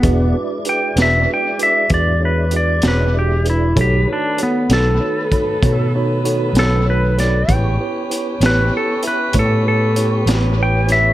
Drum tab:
HH |x-xx-xx-xx-x|x-xx-xx-xx-x|x-xx-xx-xx-x|
SD |---o-----o--|---o-----o-o|---o-----o-o|
BD |o-----o-----|o----oo-----|o-----o-----|